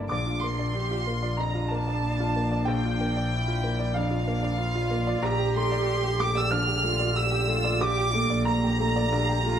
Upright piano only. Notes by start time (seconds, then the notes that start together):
Already playing: D3 A#3 A4 D5 A5 A#5
0.09 A#1 D6
0.27 F4
0.40 A#3 C6
0.59 D5
0.91 F4
1.07 A#3
1.23 D5
1.37 F2 A#5
1.55 F4
1.68 A#3 A5
1.88 D5
2.20 F4
2.36 A#3
2.51 D5
2.65 A#1 G5
2.85 F4
3.01 A#3
3.17 D5
3.48 F4
3.64 A#3
3.80 D5
3.94 F2 F5
4.11 F4
4.27 A#3
4.43 D5
4.75 F4
4.91 A#3
5.07 D5
5.23 A#1 A#5
5.39 G4
5.56 A3 C6
5.72 D5
6.04 G4
6.20 A3 D6
6.35 D5 E6
6.51 A#1 F6
6.67 G4
6.83 A3
6.99 D5
7.16 E6
7.31 G4
7.48 A3
7.65 D5
7.81 A#1 D6
7.98 G4
8.14 A3
8.30 D5
8.45 A#5
8.64 G4
8.80 A3
8.96 D5
9.12 A#1
9.29 G4
9.46 A3